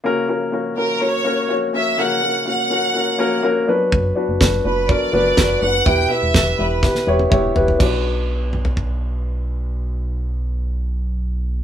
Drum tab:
CC |----------------|----------------|----------------|----------------|
SD |----------------|----------------|----o-------o---|----o---oo------|
T1 |----------------|----------------|----------------|-----------o----|
T2 |----------------|----------------|----------------|------------o---|
FT |----------------|----------------|----------------|--------------oo|
BD |----------------|----------------|o---o---o---o---|o---o---o---o---|

CC |x---------------|----------------|
SD |----------------|----------------|
T1 |----------------|----------------|
T2 |------o---------|----------------|
FT |-------o--------|----------------|
BD |o-------o-------|----------------|